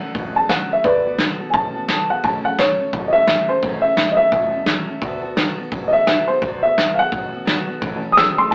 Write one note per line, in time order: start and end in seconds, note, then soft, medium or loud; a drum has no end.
0.00 0.12 F#3 soft
0.00 0.13 A3 soft
0.00 0.14 C#4 medium
0.00 0.15 A4 medium
0.00 0.34 F#5 loud
0.00 muted upright bass stroke medium
0.14 0.54 E1 medium
0.14 0.35 F#3 medium
0.14 0.36 A3 medium
0.14 0.35 C#4 medium
0.14 0.34 A4 medium
0.14 kick loud
0.14 open hi-hat medium
0.35 0.50 F#3 soft
0.35 0.50 A3 soft
0.35 0.50 C#4 medium
0.35 0.50 A4 medium
0.35 0.50 A5 medium
0.49 0.71 A2 medium
0.49 0.71 E3 medium
0.49 0.71 F#3 medium
0.49 0.71 A3 medium
0.49 0.70 C#4 medium
0.49 0.68 A4 medium
0.49 0.70 F#5 medium
0.49 snare loud
0.70 0.84 F#3 soft
0.70 0.85 A3 medium
0.70 0.85 C#4 medium
0.70 0.84 A4 medium
0.70 0.86 E5 medium
0.70 muted upright bass stroke medium
0.84 1.23 D2 medium
0.84 1.05 D3 medium
0.84 1.06 F#3 medium
0.84 1.06 B3 medium
0.84 1.05 F#4 medium
0.84 1.03 A4 medium
0.84 1.17 B4 medium
0.84 1.19 D5 medium
0.84 kick loud
0.84 open hi-hat medium
1.04 1.19 B3 soft
1.04 1.19 F#4 soft
1.04 1.19 A4 medium
1.18 1.40 D3 medium
1.18 1.40 F#3 medium
1.18 1.40 B3 medium
1.18 1.40 F#4 medium
1.18 1.39 A4 medium
1.18 snare loud
1.18 open hi-hat medium
1.40 1.53 B3 medium
1.40 1.54 F#4 medium
1.40 1.54 A4 medium
1.40 muted upright bass stroke medium
1.50 1.93 A1 medium
1.50 1.74 F#3 medium
1.50 1.53 G#5 medium
1.50 2.08 A5 loud
1.50 kick loud
1.50 open hi-hat medium
1.55 1.75 B3 medium
1.55 1.75 F#4 medium
1.55 1.73 A4 medium
1.74 1.89 B3 soft
1.74 1.89 F#4 medium
1.74 1.89 A4 medium
1.88 2.10 D3 medium
1.88 2.10 F#3 medium
1.88 2.10 B3 medium
1.88 2.09 F#4 medium
1.88 2.08 A4 medium
1.88 snare loud
1.88 open hi-hat medium
2.09 2.24 B3 soft
2.09 2.24 F#4 soft
2.09 2.24 A4 medium
2.09 2.24 F#5 medium
2.09 muted upright bass stroke medium
2.23 2.62 A1 medium
2.23 2.44 A2 medium
2.23 2.45 E3 medium
2.23 2.45 F#3 medium
2.23 2.44 A3 medium
2.23 2.44 C#4 medium
2.23 2.42 A4 loud
2.23 2.44 A5 medium
2.23 kick loud
2.23 open hi-hat medium
2.44 2.58 F#3 medium
2.44 2.58 A3 soft
2.44 2.59 C#4 soft
2.44 2.58 A4 medium
2.44 2.59 F#5 medium
2.58 2.79 A2 medium
2.58 2.79 E3 medium
2.58 2.79 F#3 medium
2.58 2.80 A3 medium
2.58 2.79 C#4 medium
2.58 2.78 A4 medium
2.58 2.93 C#5 loud
2.58 snare loud
2.58 open hi-hat medium
2.79 2.91 F#3 soft
2.79 2.92 A3 medium
2.79 2.93 C#4 medium
2.79 2.94 A4 medium
2.79 muted upright bass stroke medium
2.92 3.32 E1 medium
2.92 3.13 F#3 medium
2.92 3.14 A3 medium
2.92 3.13 C#4 medium
2.92 3.12 A4 medium
2.92 kick loud
2.92 open hi-hat medium
3.08 3.11 D#5 medium
3.13 3.26 F#3 soft
3.13 3.27 A3 soft
3.13 3.27 C#4 medium
3.13 3.27 A4 medium
3.13 3.47 E5 loud
3.27 3.48 A2 medium
3.27 3.48 E3 medium
3.27 3.49 F#3 medium
3.27 3.48 A3 medium
3.27 3.48 C#4 medium
3.27 3.47 A4 medium
3.27 snare loud
3.27 open hi-hat medium
3.48 3.63 F#3 soft
3.48 3.63 A3 soft
3.48 3.63 C#4 medium
3.48 3.63 A4 medium
3.48 3.83 C5 medium
3.48 muted upright bass stroke medium
3.62 4.02 A1 medium
3.62 3.84 A2 medium
3.62 3.84 E3 medium
3.62 3.84 F#3 medium
3.62 3.84 A3 medium
3.62 3.83 C#4 medium
3.62 3.82 A4 medium
3.62 kick loud
3.62 open hi-hat medium
3.82 3.98 F#3 soft
3.82 3.98 A3 soft
3.82 3.98 C#4 soft
3.82 3.98 A4 medium
3.82 4.15 E5 loud
3.97 4.19 A2 medium
3.97 4.19 E3 medium
3.97 4.19 F#3 medium
3.97 4.19 A3 medium
3.97 4.18 C#4 medium
3.97 4.17 A4 medium
3.97 snare loud
4.12 4.15 D#5 medium
4.17 4.31 A3 medium
4.17 4.32 C#4 soft
4.17 4.33 A4 medium
4.17 5.19 E5 loud
4.17 muted upright bass stroke medium
4.21 4.30 F#3 soft
4.31 4.71 E1 medium
4.31 4.53 F#3 medium
4.31 4.53 A3 medium
4.31 4.52 C#4 medium
4.31 4.52 A4 medium
4.31 kick loud
4.31 open hi-hat medium
4.53 4.66 F#3 soft
4.53 4.66 A3 soft
4.53 4.66 C#4 medium
4.53 4.67 A4 medium
4.66 4.88 A2 medium
4.66 4.88 E3 medium
4.66 4.88 F#3 medium
4.66 4.88 A3 medium
4.66 4.87 C#4 medium
4.66 4.86 A4 medium
4.66 snare loud
4.87 5.00 F#3 soft
4.87 5.02 A3 medium
4.87 5.02 C#4 medium
4.87 5.02 A4 medium
4.87 muted upright bass stroke medium
5.01 5.41 D2 medium
5.01 5.23 D3 medium
5.01 5.23 F#3 medium
5.01 5.23 B3 medium
5.01 5.22 F#4 loud
5.01 5.20 A4 loud
5.01 kick loud
5.01 open hi-hat medium
5.21 5.36 B3 soft
5.21 5.37 F#4 medium
5.21 5.37 A4 medium
5.36 5.57 D3 medium
5.36 5.58 F#3 medium
5.36 5.58 B3 medium
5.36 5.58 F#4 medium
5.36 5.56 A4 medium
5.36 snare loud
5.36 open hi-hat medium
5.57 5.71 B3 medium
5.57 5.72 F#4 medium
5.57 5.72 A4 medium
5.57 muted upright bass stroke medium
5.72 6.11 A1 medium
5.72 5.93 F#3 medium
5.72 5.93 B3 medium
5.72 5.91 F#4 medium
5.72 5.90 A4 medium
5.72 kick loud
5.72 open hi-hat medium
5.88 6.06 A4 medium
5.88 5.90 D#5 medium
5.93 6.06 B3 soft
5.93 6.07 F#4 medium
5.93 6.27 E5 loud
6.06 6.28 D3 medium
6.06 6.28 F#3 medium
6.06 6.28 B3 medium
6.06 6.27 F#4 medium
6.06 6.25 A4 medium
6.06 snare loud
6.26 6.42 B3 soft
6.26 6.42 F#4 medium
6.26 6.41 A4 medium
6.26 6.62 C5 medium
6.26 muted upright bass stroke medium
6.41 6.81 D2 medium
6.41 6.63 D3 medium
6.41 6.63 F#3 medium
6.41 6.63 B3 medium
6.41 6.62 F#4 medium
6.41 6.61 A4 medium
6.41 kick loud
6.41 open hi-hat medium
6.62 6.77 B3 medium
6.62 6.77 F#4 medium
6.62 6.77 A4 medium
6.62 6.97 E5 loud
6.77 6.98 D3 medium
6.77 6.98 F#3 medium
6.77 6.98 B3 medium
6.77 6.98 F#4 medium
6.77 6.97 A4 medium
6.77 snare loud
6.77 open hi-hat medium
6.94 7.12 A4 medium
6.94 6.96 F5 medium
6.94 muted upright bass stroke medium
6.99 7.10 B3 soft
6.99 7.12 F#4 soft
6.99 8.00 F#5 loud
7.11 7.51 A1 medium
7.11 7.32 F#3 medium
7.11 7.33 B3 medium
7.11 7.32 F#4 medium
7.11 7.30 A4 medium
7.11 kick loud
7.11 open hi-hat medium
7.31 7.45 B3 soft
7.31 7.46 F#4 medium
7.31 7.46 A4 medium
7.45 7.67 D3 medium
7.45 7.67 F#3 medium
7.45 7.67 B3 medium
7.45 7.67 F#4 loud
7.45 7.65 A4 loud
7.45 snare loud
7.66 7.82 B3 medium
7.66 7.82 F#4 medium
7.66 7.81 A4 medium
7.66 muted upright bass stroke medium
7.81 8.21 A1 loud
7.81 8.02 A2 medium
7.81 8.02 E3 loud
7.81 8.03 F#3 medium
7.81 8.02 A3 medium
7.81 8.02 C#4 medium
7.81 8.01 A4 loud
7.81 kick loud
7.81 open hi-hat medium
8.02 8.15 F#3 medium
8.02 8.15 A3 medium
8.02 8.16 C#4 medium
8.02 8.16 A4 medium
8.12 8.37 A2 medium
8.12 8.37 E3 medium
8.12 8.37 F#3 medium
8.12 8.15 D#6 medium
8.17 8.36 A3 medium
8.17 8.36 C#4 medium
8.17 8.35 A4 medium
8.17 8.37 E6 loud
8.17 snare loud
8.36 8.50 A2 medium
8.36 8.51 E3 medium
8.36 8.50 F#3 soft
8.36 8.51 A3 soft
8.36 8.51 C#4 medium
8.36 8.51 A4 medium
8.36 8.52 C6 loud
8.36 muted upright bass stroke medium
8.51 8.55 F#3 medium
8.51 8.55 A3 medium
8.51 8.55 A5 medium